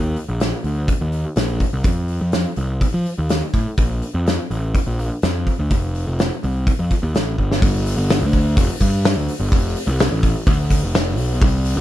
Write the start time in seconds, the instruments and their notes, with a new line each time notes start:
Already playing: picked electric bass D#2
0.16 open hi-hat
0.28 picked electric bass A#1
0.40 snare, open hi-hat
0.64 picked electric bass D2, open hi-hat
0.88 kick, open hi-hat
1.01 picked electric bass D#2
1.12 open hi-hat
1.36 picked electric bass A#1, snare, open hi-hat
1.60 kick, open hi-hat
1.73 picked electric bass C2
1.84 picked electric bass F2, kick, open hi-hat
2.08 open hi-hat
2.21 picked electric bass F2
2.32 snare, open hi-hat
2.56 picked electric bass C2, open hi-hat
2.81 kick, open hi-hat
2.94 picked electric bass F3
3.06 open hi-hat
3.18 picked electric bass D#2
3.29 snare, open hi-hat
3.54 picked electric bass A2, kick, open hi-hat
3.78 picked electric bass A#1, kick, open hi-hat
4.02 open hi-hat
4.14 picked electric bass F2
4.27 snare, open hi-hat
4.50 picked electric bass A1, open hi-hat
4.75 kick, open hi-hat
4.86 picked electric bass A#1
4.99 open hi-hat
5.22 picked electric bass F2, snare, open hi-hat
5.47 kick, open hi-hat
5.59 picked electric bass D2
5.70 picked electric bass F1, kick, open hi-hat
5.95 open hi-hat
6.07 picked electric bass F1
6.19 snare, open hi-hat
6.43 picked electric bass C2, open hi-hat
6.67 kick, open hi-hat
6.79 picked electric bass F2
6.91 kick, open hi-hat
7.03 picked electric bass D#2
7.15 picked electric bass A1, snare, open hi-hat
7.38 picked electric bass G1, kick
7.52 snare
7.62 picked electric bass G1, kick, open hi-hat
7.86 open hi-hat
7.97 picked electric bass G1
8.09 snare, open hi-hat
8.21 picked electric bass D2
8.33 kick, open hi-hat
8.57 picked electric bass F1, kick, open hi-hat
8.80 picked electric bass G2, kick, open hi-hat
9.04 snare, open hi-hat
9.16 picked electric bass D2
9.29 open hi-hat
9.40 picked electric bass G1
9.52 picked electric bass F1, kick, open hi-hat
9.76 open hi-hat
9.87 picked electric bass C2
9.99 snare, open hi-hat
10.11 picked electric bass A1
10.23 kick, open hi-hat
10.47 picked electric bass D2, kick, open hi-hat
10.70 kick, open hi-hat
10.83 picked electric bass F1
10.94 snare, open hi-hat
11.18 picked electric bass B1, open hi-hat
11.41 picked electric bass C2, kick, open hi-hat
11.65 open hi-hat
11.76 picked electric bass C2